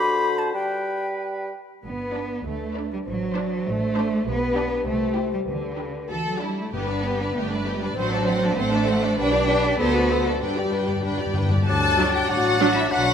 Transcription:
Already playing: bassoon D3, clarinet F#4, oboe C5, flute B5
0.38 flute A5
0.54 bassoon G3, clarinet G4, oboe B4, flute G5
1.82 double bass section G1, cello section B3, french horn section D4 B4
2.14 viola section D4, violin section B4 D5
2.45 double bass section D2, cello section A3
2.74 viola section D4, violin section B4 D5
2.91 cello section G3
3.05 double bass section A1, cello section F#3, french horn section C5
3.35 viola section D4, violin section C5 D5
3.67 double bass section A1, cello section A3
3.96 viola section D4, violin section C5 D5
4.25 double bass section B1, cello section B3, french horn section G4 B4
4.55 viola section D4, violin section G4 D5
4.84 double bass section C2, cello section A3, french horn section C5
5.16 viola section E4, violin section G4 C5
5.33 cello section G3
5.45 double bass section D2, cello section D3, timpani D3, french horn section B4
5.78 viola section D4, violin section G4 B4
6.09 double bass section D2, cello section E3, french horn section F#4 A4, violin section A4
6.26 cello section F#3
6.41 cello section G3, viola section D4, violin section E4 D5
6.59 cello section A3
6.73 double bass section G1, timpani G2, cello section B3, viola section B3, french horn section D4 B4, violin section G4 B4
6.88 viola section D4, violin section B4 D5
7.05 viola section B3, violin section G4 B4
7.20 viola section D4, violin section B4 D5
7.35 double bass section G1, cello section A3, viola section B3, violin section G4 B4
7.52 viola section D4, violin section B4 D5
7.67 viola section B3, violin section G4 B4
7.82 cello section G3, viola section D4, violin section B4 D5
7.95 double bass section A1, cello section F#3, viola section C4, french horn section C5, violin section C5
8.00 violin section F#5
8.11 viola section D4, violin section A4
8.15 violin section D5
8.25 viola section C4, violin section C5 F#5
8.41 viola section D4, violin section A4 D5
8.49 cello section B3
8.55 double bass section A1, cello section A3, viola section C4, violin section C5 F#5
8.72 viola section D4, violin section A4 D5
8.86 viola section C4, violin section C5 F#5
9.03 viola section D4, violin section A4 D5
9.17 double bass section B1, cello section D4, viola section D4, french horn section G4 B4, violin section B4 G5
9.34 viola section G4, violin section D5
9.47 viola section D4, violin section B4 G5
9.63 viola section G4, violin section D5
9.79 double bass section D2, cello section B3, french horn section F#4 C5, viola section A4, violin section C5 F#5
9.94 viola section F#4, violin section A4 D5
10.11 viola section A4, violin section C5 F#5
10.27 cello section A3, viola section F#4, violin section A4 D5
10.41 double bass section G2, timpani G2, cello section G3, viola section D4, french horn section G4 B4, violin section B4 G5
10.49 timpani G2
10.56 timpani G2, viola section G4, violin section D5
10.65 timpani G2
10.72 timpani G2, viola section D4, violin section B4 G5
10.80 timpani G2
10.87 timpani G2, viola section G4, violin section D5
10.96 timpani G2
11.03 timpani G2, double bass section G2, viola section D4, violin section B4 G5
11.11 timpani G2
11.19 timpani G2, viola section G4, violin section D5
11.26 timpani G2
11.33 timpani G2, viola section D4, violin section B4 G5
11.41 timpani G2
11.49 timpani G2, viola section G4, violin section D5
11.57 timpani G2
11.66 double bass section D2, bassoon F#3, clarinet D4, violin section A4 A5, oboe D5, flute F#6
11.98 viola section F#3 D4, french horn section D4 F#4
12.13 violin section G4 G5
12.28 double bass section A1, bassoon F#3, clarinet D4, cello section F#4, violin section F#4 F#5, oboe D5, flute F#6
12.61 viola section F#3 D4, french horn section D4 F#4
12.75 violin section E4 E5
12.89 double bass section B1, bassoon F#3, clarinet D4, cello section D4, violin section F#4 F#5, oboe B4, flute F#6

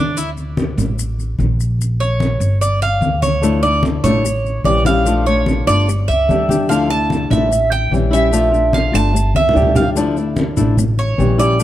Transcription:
Already playing: upright bass D2, cuban tres D4
0.17 cuban tres E4, high conga, maracas
0.37 high conga, maracas
0.57 high conga, maracas
0.78 upright bass A1, high conga, low conga, maracas
0.98 high conga, maracas
1.18 high conga, maracas
1.39 upright bass A#1, high conga, maracas
1.60 maracas
1.79 high conga, maracas
2.00 cuban tres C#5, high conga, maracas
2.20 high conga, maracas
2.40 upright bass G1, high conga, maracas
2.61 cuban tres D5, high conga, maracas
2.82 cuban tres F5, high conga, maracas
3.01 upright bass D2, high conga, maracas
3.22 cuban tres C#5, high conga, maracas
3.42 nylon-string guitar D3 F3 A3 D4 E4, high conga, maracas
3.63 nylon-string guitar A3 D4 E4, cuban tres D5, high conga, maracas
3.83 high conga, maracas
4.03 upright bass A1, nylon-string guitar F3 A3 D4 E4, cuban tres C#5, high conga, low conga, maracas
4.24 muted nylon-string guitar stroke, high conga, maracas
4.45 high conga, maracas
4.64 upright bass A#1, nylon-string guitar E3 G3 C#4 E4, cuban tres D5, high conga, maracas
4.85 nylon-string guitar G3 C#4 E4, cuban tres F5, high conga, maracas
5.05 nylon-string guitar F3 A3 D4 F4, high conga, maracas
5.26 nylon-string guitar A3 D4 F4, cuban tres C#5, high conga, maracas
5.46 high conga, maracas
5.67 upright bass G1, nylon-string guitar A3 D4 F4, cuban tres D5, high conga, maracas
5.88 muted nylon-string guitar stroke, high conga, maracas
6.08 upright bass C#2, cuban tres E5, high conga, maracas
6.28 upright bass D2, nylon-string guitar D3 G3 D4 G4, high conga, maracas
6.49 nylon-string guitar G3 D4 G4, high conga, maracas
6.69 nylon-string guitar D3 F3 A3 D4 E4, cuban tres F5, high conga, maracas
6.89 nylon-string guitar A3 D4 E4, cuban tres A5, high conga, maracas
7.10 high conga, maracas
7.30 upright bass A1, nylon-string guitar F3 A3 D4 E4, cuban tres E5, high conga, low conga, maracas
7.51 muted nylon-string guitar stroke, high conga, maracas
7.72 cuban tres G5, high conga, maracas
7.91 upright bass A#1, nylon-string guitar E3 G3 C#4 E4, high conga, maracas
8.11 nylon-string guitar G3 C#4 E4, cuban tres E5, maracas
8.31 nylon-string guitar F3 A3 D4 F4, high conga, maracas
8.52 nylon-string guitar A3 D4 F4, high conga, maracas
8.73 cuban tres F5, high conga, maracas
8.92 upright bass G1, nylon-string guitar A3 D4 F4, cuban tres A5, high conga, maracas
9.13 muted nylon-string guitar stroke, high conga, maracas
9.35 upright bass C#2, cuban tres E5, high conga, maracas
9.49 low conga
9.54 upright bass D2, nylon-string guitar D3 G3 D4 G4, maracas
9.62 low conga
9.75 nylon-string guitar G3 D4 G4, cuban tres F5, low conga, maracas
9.96 nylon-string guitar D3 F3 A3 D4 E4, high conga, maracas
10.16 nylon-string guitar A3 D4 E4, high conga, maracas
10.36 high conga, maracas
10.57 upright bass A1, nylon-string guitar F3 A3 D4 E4, high conga, low conga, maracas
10.77 muted nylon-string guitar stroke, high conga, low conga, maracas
10.97 cuban tres C#5, high conga, maracas
11.18 upright bass A#1, nylon-string guitar E3 G3 C#4 E4, high conga, maracas
11.38 nylon-string guitar G3 C#4 E4, cuban tres D5, maracas
11.59 nylon-string guitar F3 A3, high conga, maracas

